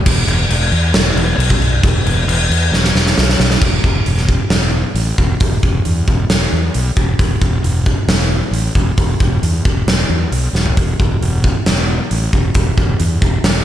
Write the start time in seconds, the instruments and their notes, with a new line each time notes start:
0.06 fingered electric bass E1, kick, crash
0.27 fingered electric bass E1, crash
0.49 fingered electric bass E1, crash
0.72 fingered electric bass E2, crash
0.94 fingered electric bass E1, snare, crash
1.16 fingered electric bass E1, crash
1.38 fingered electric bass B1, crash
1.50 kick
1.59 fingered electric bass B1, crash
1.83 fingered electric bass E1, kick, crash
2.06 fingered electric bass E1, crash
2.27 fingered electric bass E1, crash
2.49 fingered electric bass E2, crash
2.72 fingered electric bass E1, snare
2.84 snare
2.95 fingered electric bass E1, snare
3.06 snare
3.18 fingered electric bass B1, snare
3.29 snare
3.39 fingered electric bass B1, snare
3.51 snare
3.61 fingered electric bass E1, kick, crash
3.84 fingered electric bass E1, kick
4.06 fingered electric bass E1, open hi-hat
4.18 snare
4.29 kick
4.50 fingered electric bass E1, snare, open hi-hat
4.94 fingered electric bass A1, open hi-hat
5.18 fingered electric bass E1, kick
5.40 fingered electric bass E1, kick, open hi-hat
5.63 fingered electric bass E1, kick
5.85 fingered electric bass E2, open hi-hat
6.08 fingered electric bass E1, kick
6.29 fingered electric bass E1, snare, open hi-hat
6.52 fingered electric bass E2
6.74 fingered electric bass B1, open hi-hat
6.97 fingered electric bass E1, kick
7.19 fingered electric bass E1, kick, open hi-hat
7.41 fingered electric bass E1, kick
7.62 fingered electric bass E1, open hi-hat
7.86 kick
8.08 fingered electric bass E1, snare, open hi-hat
8.51 fingered electric bass A1, open hi-hat
8.75 fingered electric bass E1, kick
8.97 fingered electric bass E1, kick, open hi-hat
9.20 fingered electric bass E1, kick
9.43 fingered electric bass E2, open hi-hat
9.65 fingered electric bass E1, kick
9.87 fingered electric bass E1, snare, open hi-hat
10.09 fingered electric bass E2
10.31 fingered electric bass B1, open hi-hat
10.53 fingered electric bass E1, snare
10.66 floor tom
10.77 fingered electric bass E1, kick, open hi-hat
11.00 fingered electric bass E1, kick
11.21 fingered electric bass E1, open hi-hat
11.44 kick
11.66 fingered electric bass E1, snare, open hi-hat
12.11 fingered electric bass A1, open hi-hat
12.33 fingered electric bass E1, kick
12.54 fingered electric bass E1, kick, open hi-hat
12.77 fingered electric bass E1, kick
13.00 fingered electric bass E2, open hi-hat
13.22 fingered electric bass E1, kick
13.44 fingered electric bass E1, snare, open hi-hat